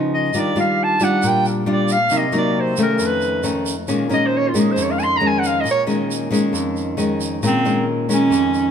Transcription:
0.00 0.31 C#3 medium
0.00 0.30 F3 medium
0.00 0.30 B3 medium
0.00 0.31 D#4 medium
0.14 0.40 D#5 medium
0.34 1.21 D#3 medium
0.34 0.52 G3 soft
0.34 0.53 D4 soft
0.34 0.53 F4 soft
0.34 shaker medium
0.38 0.58 D5 medium
0.56 0.96 G3 soft
0.56 0.97 D4 medium
0.56 0.97 F4 medium
0.56 shaker soft
0.60 0.85 F5 medium
0.83 1.05 A5 loud
1.00 1.63 G3 medium
1.00 1.63 D4 medium
1.00 1.64 F4 medium
1.00 1.29 F#5 medium
1.00 shaker medium
1.22 2.09 A#2 medium
1.22 shaker medium
1.27 1.47 G5 medium
1.45 1.64 A#4 soft
1.45 shaker soft
1.66 1.96 G3 medium
1.66 1.96 D4 medium
1.66 1.97 F4 medium
1.72 1.94 D5 medium
1.89 2.19 F5 loud
1.89 shaker medium
2.10 2.97 C3 medium
2.10 2.24 F#3 soft
2.10 2.24 A#3 medium
2.10 2.24 D#4 medium
2.10 shaker medium
2.17 2.36 D#5 medium
2.32 2.73 F#3 medium
2.32 2.74 A#3 medium
2.32 2.74 D#4 medium
2.32 shaker soft
2.38 2.62 D5 medium
2.60 2.80 C5 medium
2.76 3.40 D#3 medium
2.76 3.41 A3 medium
2.76 3.41 C#4 medium
2.76 shaker medium
2.83 3.08 A#4 medium
2.99 3.86 F2 medium
2.99 shaker medium
3.06 3.47 B4 medium
3.21 shaker soft
3.43 3.73 D#3 medium
3.43 3.74 A3 medium
3.43 3.74 C#4 medium
3.43 shaker medium
3.66 shaker medium
3.88 4.75 A#2 medium
3.88 4.07 D#3 medium
3.88 4.07 G#3 medium
3.88 4.07 C#4 medium
3.88 shaker medium
4.09 4.51 D#3 medium
4.09 4.51 G#3 medium
4.09 4.51 C#4 medium
4.09 4.27 D#5 medium
4.09 shaker soft
4.26 4.39 C5 medium
4.37 4.50 C#5 loud
4.48 4.61 F4 medium
4.54 5.17 D#3 medium
4.54 5.18 G#3 medium
4.54 5.17 C#4 medium
4.54 shaker medium
4.59 4.73 G#4 medium
4.71 4.84 C5 medium
4.76 5.63 F2 medium
4.76 shaker medium
4.83 4.92 C#5 medium
4.91 5.01 F5 medium
4.99 5.05 G#5 medium
4.99 shaker soft
5.03 5.18 C6 loud
5.17 5.65 D#3 medium
5.17 5.28 A#5 medium
5.21 5.65 G#3 medium
5.21 5.65 C#4 medium
5.27 5.40 G#5 medium
5.39 5.48 F#5 medium
5.44 5.62 F5 medium
5.44 shaker medium
5.60 6.51 A#2 medium
5.60 5.68 D#5 medium
5.66 shaker medium
5.71 5.83 C#5 medium
5.87 6.28 D#3 medium
5.87 6.28 G#3 medium
5.87 6.28 C#4 medium
5.87 shaker soft
6.11 shaker medium
6.31 6.94 D#3 medium
6.31 6.95 G#3 medium
6.31 6.95 C#4 medium
6.31 shaker medium
6.53 7.40 F2 medium
6.53 shaker medium
6.76 shaker soft
6.97 7.40 D#3 soft
6.97 7.40 G#3 medium
6.97 7.40 C#4 medium
6.97 shaker medium
7.21 shaker medium
7.43 8.29 A#2 medium
7.43 7.61 D#3 medium
7.43 7.62 G#3 medium
7.43 7.86 C4 loud
7.43 7.62 C#4 medium
7.43 shaker medium
7.65 8.06 D#3 medium
7.65 8.06 G#3 medium
7.65 8.06 C#4 medium
7.65 shaker soft
8.09 8.71 D#3 medium
8.09 8.71 G#3 medium
8.09 8.71 C#4 medium
8.09 shaker medium
8.14 8.71 C#4 medium
8.30 8.71 F2 medium
8.30 shaker medium
8.54 shaker soft

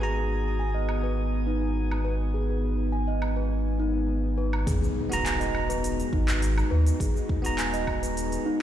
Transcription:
0.00 4.64 G#1 medium
0.00 8.62 G#3 medium
0.00 4.63 B3 medium
0.00 8.62 B3 medium
0.00 8.62 D#4 medium
0.00 1.31 F#4 medium
0.00 4.64 F#4 medium
0.00 4.69 G#4 medium
0.00 0.15 G#4 medium
0.00 4.69 G#5 medium
0.00 4.65 A#5 medium
0.16 0.30 G#4 medium
0.59 0.74 G#5 medium
0.75 1.02 D#5 medium
0.89 low woodblock medium
1.04 1.17 B4 medium
1.13 4.67 F5 medium
1.47 1.61 D#4 medium
1.91 low woodblock medium
2.05 2.19 B4 medium
2.34 2.48 G#4 medium
2.50 2.63 G#4 medium
2.92 3.07 G#5 medium
3.08 3.35 D#5 medium
3.22 low woodblock medium
3.37 3.50 B4 medium
3.80 3.94 D#4 medium
4.38 4.52 B4 medium
4.53 low woodblock medium
4.67 4.77 G#1 medium
4.67 4.81 G#4 medium
4.67 kick loud
4.67 open hi-hat medium
4.67 impact medium
4.67 shaker medium
4.82 8.62 F#4 medium
4.82 4.95 G#4 medium
4.82 shaker soft
5.09 6.05 D#1 loud
5.09 7.40 B3 medium
5.09 7.41 F#4 medium
5.09 7.42 A#5 medium
5.09 open hi-hat soft
5.09 shaker medium
5.25 5.40 G#5 medium
5.25 clap medium
5.25 open hi-hat medium
5.25 shaker medium
5.40 5.68 D#5 medium
5.40 open hi-hat soft
5.40 shaker soft
5.55 low woodblock medium
5.69 5.83 B4 medium
5.69 open hi-hat soft
5.69 shaker medium
5.84 open hi-hat medium
5.84 shaker medium
6.00 open hi-hat soft
6.00 shaker soft
6.13 6.63 G#1 loud
6.13 6.27 D#4 loud
6.13 kick loud
6.28 clap medium
6.28 open hi-hat soft
6.28 shaker medium
6.42 open hi-hat medium
6.42 shaker medium
6.58 low woodblock medium
6.58 shaker soft
6.71 6.90 D#2 medium
6.71 6.86 B4 loud
6.87 open hi-hat soft
6.87 shaker medium
7.00 7.10 G#1 medium
7.00 7.14 G#4 medium
7.00 kick loud
7.00 open hi-hat medium
7.00 shaker medium
7.16 7.29 G#4 medium
7.16 shaker soft
7.29 kick loud
7.42 8.38 D#1 loud
7.42 8.62 B3 medium
7.42 8.62 F#4 medium
7.42 open hi-hat soft
7.42 shaker medium
7.46 8.62 A#5 medium
7.58 7.73 G#5 medium
7.58 clap medium
7.58 open hi-hat medium
7.58 shaker medium
7.74 8.01 D#5 medium
7.74 open hi-hat soft
7.74 shaker soft
7.87 kick medium
7.87 low woodblock medium
8.03 8.16 B4 medium
8.03 open hi-hat soft
8.03 shaker medium
8.17 open hi-hat medium
8.17 shaker medium
8.32 open hi-hat soft
8.32 shaker soft
8.46 8.60 D#4 loud

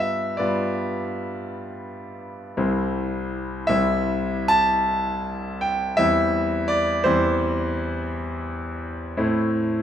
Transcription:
0.00 0.34 G2 medium
0.00 0.34 G3 soft
0.00 0.35 B3 soft
0.00 0.35 F4 soft
0.00 0.37 E5 medium
0.00 2.59 F5 medium
0.37 2.54 G2 medium
0.37 2.54 G3 soft
0.37 2.54 B3 soft
0.37 2.54 F4 soft
0.37 2.20 D5 medium
2.57 3.66 C2 medium
2.57 3.66 G3 soft
2.57 3.66 C4 soft
2.57 3.66 E4 soft
3.67 5.94 C2 medium
3.67 5.94 G3 soft
3.67 5.94 C4 medium
3.67 5.94 E4 soft
3.67 4.51 E5 medium
4.48 5.61 A5 loud
5.61 5.97 G5 medium
5.97 7.03 E2 medium
5.97 7.03 G3 medium
5.97 7.03 C4 medium
5.97 7.03 E4 medium
5.97 6.69 E5 loud
6.68 7.05 D5 loud
7.04 9.14 E2 medium
7.04 9.14 G3 medium
7.04 9.14 C4 medium
7.04 9.14 E4 medium
7.04 8.83 C5 medium
9.17 9.82 A2 medium
9.17 9.82 A3 medium
9.17 9.82 C4 medium
9.17 9.82 E4 medium

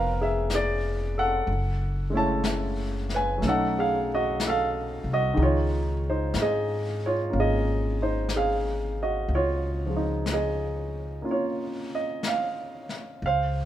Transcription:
0.00 1.43 F1 medium
0.00 1.47 F3 soft
0.00 1.47 B3 soft
0.00 1.48 D4 soft
0.00 0.18 A#4 medium
0.00 1.50 B4 medium
0.00 0.19 F5 medium
0.00 1.49 G5 medium
0.21 0.50 G#4 medium
0.21 0.50 E5 medium
0.50 brush sweep soft
0.50 snare soft
0.50 hi-hat pedal soft
0.54 1.13 G#4 soft
0.54 1.19 D5 medium
1.18 2.10 A4 medium
1.18 2.17 F#5 medium
1.47 3.38 F#1 medium
1.47 brush sweep soft
2.10 3.42 G#3 soft
2.10 3.40 A3 soft
2.10 3.43 C#4 soft
2.15 3.44 E4 soft
2.15 3.07 C#5 medium
2.15 3.15 A5 medium
2.44 brush sweep soft
2.44 snare soft
2.44 hi-hat pedal soft
3.09 snare soft
3.15 3.43 B4 soft
3.15 3.47 G#5 medium
3.38 5.35 F#3 soft
3.38 5.37 A3 soft
3.42 5.00 B1 medium
3.42 5.38 C#4 soft
3.42 brush sweep soft
3.42 snare soft
3.47 5.38 D#4 soft
3.47 3.75 A4 medium
3.47 3.76 F#5 medium
3.79 4.07 G#4 soft
3.79 4.08 F5 medium
4.14 4.41 F#4 soft
4.14 4.44 D#5 medium
4.40 brush sweep soft
4.40 snare soft
4.40 hi-hat pedal soft
4.47 5.04 A4 medium
4.47 5.11 F5 medium
5.04 5.35 C2 medium
5.13 5.40 F#4 soft
5.13 5.43 D#5 medium
5.34 6.31 C#2 medium
5.34 9.27 D#3 soft
5.34 9.28 G#3 soft
5.34 brush sweep soft
5.39 6.09 D#4 medium
5.39 6.00 F4 medium
5.39 6.00 C#5 medium
6.10 6.37 D#4 soft
6.10 6.40 C5 medium
6.34 7.28 G#2 medium
6.34 brush sweep soft
6.34 snare soft
6.34 hi-hat pedal soft
6.42 6.99 G#4 medium
6.42 7.05 D#5 medium
7.06 7.34 F4 soft
7.06 7.37 C#5 medium
7.30 9.25 G#1 medium
7.30 9.27 A#3 soft
7.30 9.28 C#4 soft
7.30 8.36 F5 soft
7.30 brush sweep soft
7.40 7.96 G#4 medium
7.40 7.97 D#5 medium
8.02 8.31 D#4 soft
8.02 8.31 C5 medium
8.29 brush sweep soft
8.29 snare soft
8.29 hi-hat pedal soft
8.36 8.94 G#4 soft
8.36 9.00 F5 medium
9.03 9.30 F#4 soft
9.03 9.33 D#5 medium
9.27 11.21 C#2 medium
9.27 brush sweep soft
9.35 10.26 F4 medium
9.35 10.32 C#5 medium
9.86 13.19 F3 soft
9.86 13.21 G#3 soft
9.96 13.24 D#4 soft
10.26 brush sweep soft
10.26 snare soft
10.26 hi-hat pedal soft
10.33 11.24 G#4 soft
10.33 11.24 D#5 medium
11.22 13.21 A#3 soft
11.22 13.22 C#4 soft
11.22 11.30 F4 soft
11.22 brush sweep soft
11.31 12.23 F4 soft
11.31 12.23 C#5 medium
11.95 12.27 D#5 medium
12.23 brush sweep soft
12.23 snare soft
12.23 hi-hat pedal soft
12.28 13.21 F5 medium
12.89 snare soft
13.21 13.65 C#2 medium
13.21 brush sweep soft
13.26 13.65 C5 medium
13.26 13.65 F5 medium

